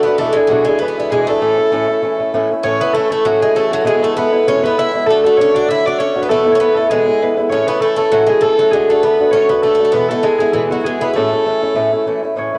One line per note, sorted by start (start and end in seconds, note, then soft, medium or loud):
0.00 0.18 B3 medium
0.00 0.19 A4 medium
0.00 1.42 D5 medium
0.00 0.85 E5 medium
0.00 0.28 F#5 medium
0.05 0.19 A3 soft
0.05 0.18 D4 soft
0.05 0.19 F#4 soft
0.05 0.20 B4 medium
0.05 0.81 B4 medium
0.18 0.36 E2 medium
0.18 0.36 B2 medium
0.18 0.36 E3 medium
0.18 0.36 G#3 medium
0.18 0.34 A3 medium
0.18 0.35 D4 medium
0.18 0.35 E4 medium
0.18 0.37 A4 medium
0.18 0.43 A4 medium
0.33 0.47 G#3 medium
0.33 0.50 D4 medium
0.33 0.50 E4 medium
0.33 0.50 G#4 medium
0.33 0.68 G#4 medium
0.37 0.50 E3 soft
0.37 0.50 G#3 soft
0.47 0.66 E2 medium
0.47 0.66 B2 medium
0.47 0.67 E3 medium
0.47 0.64 F#3 medium
0.47 0.66 G#3 medium
0.47 0.65 D4 medium
0.47 0.65 E4 medium
0.47 0.66 F#4 medium
0.47 2.94 F#4 medium
0.64 0.79 E3 soft
0.64 0.79 G#3 medium
0.64 0.80 G#3 soft
0.64 0.81 D4 medium
0.64 0.80 E4 medium
0.64 0.81 G#4 medium
0.64 1.12 G#4 medium
0.79 0.97 E3 soft
0.79 0.97 G#3 medium
0.79 0.87 B3 medium
0.79 0.96 D4 soft
0.79 0.96 E4 medium
0.79 1.12 B4 medium
0.79 2.80 B4 medium
0.88 0.98 B3 medium
0.97 1.11 E3 soft
0.97 1.11 G#3 soft
0.97 1.10 B3 medium
0.97 1.11 D4 soft
0.97 1.11 E4 medium
1.10 1.28 E2 medium
1.10 1.28 B2 medium
1.10 1.28 E3 medium
1.10 1.28 G#3 medium
1.10 1.27 D4 medium
1.10 1.26 E4 medium
1.10 1.30 G#4 medium
1.10 1.19 G#4 medium
1.27 1.41 E3 soft
1.27 1.41 G#3 soft
1.27 2.29 A3 medium
1.27 1.42 D4 soft
1.27 1.41 E4 soft
1.27 2.34 A4 medium
1.27 2.92 A4 medium
1.41 1.58 A2 medium
1.41 1.58 E3 medium
1.41 1.58 A3 medium
1.41 1.57 C#4 medium
1.41 1.56 E4 medium
1.58 1.71 A3 soft
1.58 1.71 C#4 medium
1.58 1.72 E4 medium
1.72 1.88 A2 medium
1.72 1.88 E3 medium
1.72 1.88 A3 medium
1.72 1.88 C#4 medium
1.72 1.86 E4 medium
1.88 2.01 A3 medium
1.88 2.02 E4 medium
2.02 2.19 E3 medium
2.02 2.19 A3 soft
2.02 2.18 C#4 medium
2.02 2.17 E4 medium
2.18 2.33 A3 soft
2.18 2.34 C#4 medium
2.18 2.33 E4 soft
2.34 2.50 A2 medium
2.34 2.50 E3 medium
2.34 2.50 A3 medium
2.34 2.50 C#4 medium
2.34 2.50 E4 medium
2.51 2.64 A3 soft
2.51 2.64 C#4 soft
2.51 2.64 E4 medium
2.63 2.80 A2 medium
2.63 2.81 E3 medium
2.63 2.81 A3 medium
2.63 2.80 C#4 medium
2.63 2.81 C#4 medium
2.63 2.80 E4 medium
2.63 2.83 C#5 medium
2.63 4.47 C#5 loud
2.80 2.95 A3 soft
2.80 2.94 B3 medium
2.80 2.96 C#4 medium
2.80 2.95 E4 medium
2.80 4.17 B4 medium
2.80 2.97 B4 medium
2.93 3.11 E3 medium
2.93 3.11 A3 medium
2.93 3.12 A3 medium
2.93 3.10 A4 loud
2.93 3.11 A4 medium
2.97 3.11 C#4 medium
2.97 3.09 E4 medium
3.10 3.25 A3 medium
3.10 3.25 A3 soft
3.10 3.25 C#4 soft
3.10 3.25 E4 medium
3.10 3.48 A4 medium
3.10 3.27 A4 medium
3.25 3.42 A2 medium
3.25 3.42 E3 medium
3.25 3.40 F#3 medium
3.25 3.42 A3 medium
3.25 3.41 C#4 medium
3.25 3.40 E4 medium
3.25 3.74 F#4 medium
3.25 3.42 F#4 medium
3.41 3.55 G#3 medium
3.41 3.54 A3 soft
3.41 3.55 C#4 soft
3.41 3.55 E4 soft
3.41 3.58 G#4 medium
3.41 3.62 G#4 medium
3.55 3.71 E3 medium
3.55 3.71 A3 medium
3.55 3.71 C#4 medium
3.55 3.69 E4 medium
3.55 3.73 A4 medium
3.55 3.92 A4 medium
3.71 3.87 F#3 medium
3.71 3.85 A3 soft
3.71 3.85 C#4 soft
3.71 3.84 E4 soft
3.71 3.86 F#4 medium
3.71 6.18 F#4 medium
3.84 4.01 E2 medium
3.84 4.01 B2 medium
3.84 4.02 E3 medium
3.84 4.01 G#3 medium
3.84 4.02 G#3 medium
3.84 4.00 B3 medium
3.84 3.99 E4 medium
3.84 3.92 G#4 loud
3.84 4.04 G#4 medium
4.01 4.15 E3 soft
4.01 4.15 G#3 medium
4.01 4.16 A3 medium
4.01 4.16 B3 medium
4.01 4.16 E4 medium
4.01 4.19 A4 medium
4.01 5.06 A4 medium
4.16 4.33 E3 medium
4.16 4.33 G#3 medium
4.16 4.45 B3 medium
4.16 4.32 B3 medium
4.16 4.31 E4 medium
4.16 4.63 B4 medium
4.16 4.50 B4 medium
4.32 4.47 E3 soft
4.32 4.46 G#3 soft
4.32 4.47 B3 soft
4.32 4.47 E4 medium
4.47 4.63 E2 medium
4.47 4.63 B2 medium
4.47 4.64 E3 medium
4.47 4.63 G#3 medium
4.47 4.64 B3 medium
4.47 4.63 C#4 loud
4.47 4.63 E4 medium
4.47 4.54 C#5 medium
4.47 4.66 C#5 medium
4.63 4.76 E3 soft
4.63 4.77 G#3 soft
4.63 4.78 B3 soft
4.63 4.79 B3 medium
4.63 4.78 E4 medium
4.63 6.21 B4 loud
4.63 4.81 B4 medium
4.77 4.94 E3 medium
4.77 4.94 G#3 medium
4.77 4.94 B3 medium
4.77 5.07 E4 medium
4.77 4.92 E4 medium
4.77 5.68 E5 loud
4.77 5.07 E5 medium
4.94 5.08 E3 soft
4.94 5.08 G#3 soft
4.94 5.08 B3 soft
4.94 5.08 E4 soft
5.06 5.25 D3 medium
5.06 5.25 A3 medium
5.06 5.24 D4 medium
5.06 5.23 F#4 medium
5.06 5.12 A4 loud
5.06 5.23 A4 medium
5.11 5.25 A3 medium
5.24 5.39 A3 medium
5.24 5.38 A3 soft
5.24 5.39 D4 medium
5.24 5.39 F#4 medium
5.24 6.28 A4 medium
5.24 5.40 A4 medium
5.37 5.55 D3 medium
5.37 5.55 A3 medium
5.37 5.54 D4 medium
5.37 5.53 F#4 medium
5.37 5.60 C#5 loud
5.37 5.57 C#5 medium
5.41 5.57 C#4 medium
5.54 5.67 A3 soft
5.54 5.68 D4 medium
5.54 5.69 F#4 medium
5.54 5.86 D5 medium
5.54 5.70 D5 medium
5.68 5.85 D3 medium
5.68 5.85 A3 medium
5.68 5.85 D4 medium
5.68 5.85 E4 medium
5.68 5.85 F#4 medium
5.68 7.41 E5 medium
5.68 5.87 E5 loud
5.86 5.99 A3 soft
5.86 5.99 D4 soft
5.86 6.00 D4 medium
5.86 6.00 F#4 medium
5.86 6.00 D5 medium
5.86 6.05 D5 loud
5.98 6.15 D3 medium
5.98 6.16 A3 medium
5.98 6.22 C#4 medium
5.98 6.15 D4 medium
5.98 6.14 F#4 medium
5.98 6.25 C#5 medium
5.98 6.51 C#5 medium
6.15 6.29 A3 soft
6.15 6.30 D4 soft
6.15 6.30 F#4 medium
6.21 6.30 B3 medium
6.21 6.60 B4 medium
6.21 6.29 B4 medium
6.29 6.46 E2 medium
6.29 6.46 B2 medium
6.29 6.46 E3 medium
6.29 6.46 A3 medium
6.29 6.52 A3 medium
6.29 6.45 B3 medium
6.29 6.45 E4 medium
6.29 6.74 A4 loud
6.29 6.55 A4 medium
6.46 6.59 E3 medium
6.46 6.60 A3 soft
6.46 6.60 B3 soft
6.46 6.60 E4 medium
6.52 6.60 C#4 medium
6.52 7.49 C#5 medium
6.52 6.60 C#5 medium
6.60 6.77 E3 medium
6.60 6.77 A3 medium
6.60 6.88 B3 medium
6.60 6.77 B3 medium
6.60 6.75 E4 medium
6.60 7.66 B4 medium
6.60 6.78 B4 medium
6.74 6.91 A3 medium
6.74 6.90 B3 soft
6.74 6.91 E4 medium
6.74 6.95 A4 medium
6.74 6.91 A4 medium
6.79 6.91 E3 soft
6.89 7.07 E2 medium
6.89 7.07 B2 medium
6.89 7.07 E3 medium
6.89 7.34 G#3 medium
6.89 7.07 G#3 medium
6.89 7.07 B3 medium
6.89 7.06 E4 medium
6.89 7.86 G#4 medium
6.89 7.24 G#4 medium
7.07 7.20 E3 soft
7.07 7.20 G#3 soft
7.07 7.22 B3 soft
7.07 7.21 E4 soft
7.21 7.37 E3 medium
7.21 7.37 G#3 medium
7.21 7.37 B3 medium
7.21 7.36 E4 medium
7.21 7.38 B4 medium
7.37 7.50 E3 soft
7.37 7.52 G#3 medium
7.37 7.52 B3 soft
7.37 7.51 E4 medium
7.49 7.68 A2 medium
7.49 7.67 E3 medium
7.49 7.68 A3 medium
7.49 7.67 C#4 medium
7.49 7.68 C#4 medium
7.49 7.67 E4 medium
7.49 9.30 C#5 medium
7.49 7.70 C#5 medium
7.67 7.80 A3 soft
7.67 7.81 B3 medium
7.67 7.80 C#4 medium
7.67 7.82 E4 medium
7.67 9.02 B4 medium
7.67 7.84 B4 medium
7.80 7.97 E3 medium
7.80 7.98 A3 medium
7.80 7.95 A3 medium
7.80 7.97 C#4 medium
7.80 7.96 E4 medium
7.80 7.86 A4 medium
7.80 8.14 A4 medium
7.96 8.10 A3 medium
7.96 8.11 A3 soft
7.96 8.11 C#4 soft
7.96 8.12 E4 soft
7.96 8.35 A4 medium
8.11 8.28 A2 medium
8.11 8.28 E3 medium
8.11 8.26 F#3 medium
8.11 8.28 A3 medium
8.11 8.28 C#4 medium
8.11 8.28 E4 medium
8.11 8.58 F#4 medium
8.11 8.29 F#4 medium
8.27 8.40 G#3 medium
8.27 8.42 A3 soft
8.27 8.42 C#4 soft
8.27 8.43 E4 soft
8.27 8.45 G#4 medium
8.27 8.48 G#4 medium
8.41 8.58 E3 medium
8.41 8.58 A3 medium
8.41 8.59 A3 medium
8.41 8.59 C#4 medium
8.41 8.58 E4 medium
8.41 8.77 A4 medium
8.41 8.75 A4 medium
8.58 8.72 F#3 medium
8.58 8.72 A3 soft
8.58 8.73 C#4 soft
8.58 8.73 E4 soft
8.58 8.64 F#4 medium
8.71 8.89 D3 medium
8.71 8.90 G#3 medium
8.71 8.89 A3 medium
8.71 8.89 D4 medium
8.71 8.89 F#4 medium
8.71 8.95 G#4 loud
8.71 8.92 G#4 medium
8.89 9.02 A3 medium
8.89 9.04 A3 soft
8.89 9.04 D4 medium
8.89 9.03 F#4 medium
8.89 9.62 A4 medium
8.89 9.06 A4 medium
9.03 9.20 D3 medium
9.03 9.20 A3 medium
9.03 9.32 B3 medium
9.03 9.19 D4 medium
9.03 9.19 F#4 medium
9.03 9.48 B4 medium
9.03 9.34 B4 medium
9.20 9.32 A3 soft
9.20 9.33 D4 medium
9.20 9.33 F#4 medium
9.31 9.49 D3 medium
9.31 9.49 A3 medium
9.31 9.48 C#4 medium
9.31 9.50 D4 medium
9.31 9.49 F#4 medium
9.31 11.22 C#5 medium
9.35 9.52 C#5 medium
9.49 9.63 A3 soft
9.49 9.62 B3 medium
9.49 9.64 D4 soft
9.49 9.64 F#4 soft
9.49 9.93 B4 medium
9.49 9.65 B4 medium
9.62 9.79 D3 medium
9.62 9.73 A3 medium
9.62 9.80 A3 medium
9.62 9.79 D4 medium
9.62 9.78 F#4 medium
9.62 10.08 A4 medium
9.62 9.95 A4 medium
9.75 9.83 A3 medium
9.79 9.94 A3 soft
9.79 9.94 D4 soft
9.79 9.93 F#4 soft
9.85 9.91 A3 medium
9.92 10.10 E2 medium
9.92 10.10 B2 medium
9.92 10.10 E3 medium
9.92 10.11 G#3 medium
9.92 10.08 B3 medium
9.92 11.00 B4 medium
9.92 10.11 B4 medium
9.96 10.10 B3 medium
9.96 10.09 E4 medium
10.08 10.22 E3 soft
10.08 10.23 G#3 soft
10.08 10.25 A3 medium
10.08 10.24 B3 medium
10.08 10.24 E4 medium
10.08 10.29 A4 medium
10.08 10.27 A4 medium
10.23 10.40 E3 medium
10.23 10.38 G#3 medium
10.23 10.40 G#3 medium
10.23 10.40 B3 medium
10.23 10.39 E4 medium
10.23 10.38 G#4 medium
10.23 10.54 G#4 medium
10.38 10.53 G#3 medium
10.38 10.54 G#3 soft
10.38 10.54 B3 soft
10.38 10.54 E4 medium
10.38 10.84 G#4 medium
10.43 10.53 E3 soft
10.52 10.70 E2 medium
10.52 10.71 B2 medium
10.52 10.69 E3 medium
10.52 10.71 E3 medium
10.52 10.70 G#3 medium
10.52 10.70 B3 medium
10.52 12.58 E4 medium
10.52 10.62 E4 medium
10.52 10.69 E4 medium
10.70 10.84 E3 soft
10.70 10.86 F#3 medium
10.70 10.85 G#3 soft
10.70 10.85 B3 soft
10.70 10.84 E4 soft
10.70 12.58 F#4 medium
10.70 10.87 F#4 medium
10.84 11.01 E3 medium
10.84 11.02 G#3 medium
10.84 11.01 G#3 medium
10.84 11.00 B3 medium
10.84 10.99 E4 medium
10.84 11.22 G#4 medium
10.84 11.04 G#4 medium
11.00 11.15 E3 soft
11.00 11.15 G#3 soft
11.00 11.13 B3 medium
11.00 11.15 B3 soft
11.00 11.15 E4 medium
11.00 11.07 B4 medium
11.00 11.17 B4 medium
11.13 11.32 A2 medium
11.13 11.32 E3 medium
11.13 12.01 A3 medium
11.13 11.32 A3 medium
11.13 11.32 C#4 medium
11.13 11.30 E4 medium
11.13 12.58 A4 medium
11.13 12.06 A4 medium
11.32 11.45 A3 soft
11.32 11.45 C#4 medium
11.32 11.45 E4 soft
11.46 11.62 E3 medium
11.46 11.62 A3 medium
11.46 11.62 C#4 medium
11.46 11.61 E4 medium
11.62 11.74 A3 soft
11.62 11.75 C#4 medium
11.62 11.75 E4 medium
11.74 11.91 A2 medium
11.74 11.92 E3 medium
11.74 11.91 A3 medium
11.74 11.92 C#4 medium
11.74 11.90 E4 medium
11.92 12.06 A3 soft
11.92 12.06 C#4 soft
11.92 12.06 E4 medium
12.06 12.22 E3 medium
12.06 12.23 A3 medium
12.06 12.23 C#4 medium
12.06 12.22 E4 medium
12.23 12.36 A3 soft
12.23 12.36 C#4 soft
12.23 12.36 E4 soft
12.36 12.52 A2 medium
12.36 12.52 E3 medium
12.36 12.53 A3 medium
12.36 12.52 C#4 medium
12.36 12.51 E4 medium
12.36 12.58 C#5 medium
12.53 12.58 A3 soft
12.53 12.58 C#4 soft
12.53 12.58 E4 soft
12.53 12.58 B4 medium